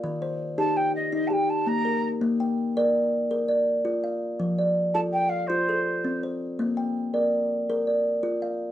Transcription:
<<
  \new Staff \with { instrumentName = "Flute" } { \time 12/8 \key bes \major \tempo 4. = 110 r4. a''8 g''8 ees''8 ees''16. a''32 g''8 a''8 bes''4~ bes''32 r16. | r1. | r4. a''8 g''8 f''8 c''2 r4 | r1. | }
  \new Staff \with { instrumentName = "Kalimba" } { \time 12/8 \key bes \major << { f''8 c''4 g'4. r8 g'4. bes'4~ | bes'8 g''4 d''4. r8 d''4. f''4~ | f''8 d''4 a'4. r8 a'4. c''4~ | c''8 g''4 d''4. r8 d''4. f''4 | } \\ { ees4 r8 ees'4 r8 ees'4 r8 bes4 r8 | bes4 r8 bes'4 r8 bes'4 r8 f'4 r8 | f4 r8 f'4 r8 f'4 r8 c'4 r8 | bes4 r8 bes'4 r8 bes'4 r8 f'4 r8 | } >> }
>>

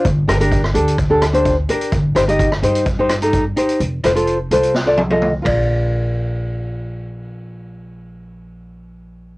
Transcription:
<<
  \new Staff \with { instrumentName = "Nylon-string guitar" } { \time 4/4 \key bes \major \tempo 4 = 128 r8 <d' g' bes'>16 <d' g' bes'>8 r16 <d' g' a'>8 r16 <d' g' a'>16 r16 <d' g' c''>8 r16 <d' g' bes'>8 | r8 <ees' g' c''>16 <ees' g' ees''>8 r16 <ees' g' c''>8 r16 <ees' g' c''>16 r16 <ees' g' a'>8 r16 <ees' g' c''>8 | r8 <f' a' c''>16 <f' a' c''>8 r16 <f' a' c''>8 r16 <f' a' d''>16 r16 <f' a' ees''>8 r16 <f' bes' d''>8~ | <f' bes' d''>1~ |
<f' bes' d''>1 | }
  \new Staff \with { instrumentName = "Upright bass" } { \clef bass \time 4/4 \key bes \major g,,8 g,,4 d,2 r8 | g,,8 g,,4 g,2 r8 | f,,8 f,,4 c,2 bes,,8~ | bes,,1~ |
bes,,1 | }
  \new DrumStaff \with { instrumentName = "Drums" } \drummode { \time 4/4 <hh bd>8 <hh ss>16 hh16 <hh bd>16 ss16 hh16 hh16 <hh bd>8 <hh ss>16 hh16 <hh bd>8 hh16 hh16 | <hh bd>8 <hh ss>16 hh16 <hh bd>16 ss16 hh16 hh16 <hh bd>8 <hh ss>16 hh16 <hh bd>8 hh16 hh16 | hh8 <hh ss>16 hh16 hh8 hh16 hh16 sn8 tommh16 tommh16 toml8 <bd cymr>8 | r4 r4 r4 r4 |
r4 r4 r4 r4 | }
>>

